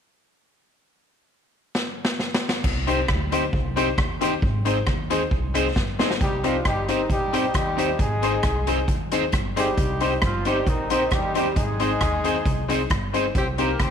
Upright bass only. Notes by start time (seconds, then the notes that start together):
2.64 C2
3.09 D2
3.53 C2
3.98 D#2
4.42 G#1
4.87 D#2
5.31 C2
5.76 G1
6.21 C2
6.66 G1
7.10 A#1
7.55 D#2
7.99 G#1
8.44 C2
8.88 D#2
9.33 G1
9.78 C2
10.23 G1
10.67 A#1
11.12 D#2
11.57 G#1
12.01 D#2
12.46 C2
12.91 G1
13.35 C2
13.80 D2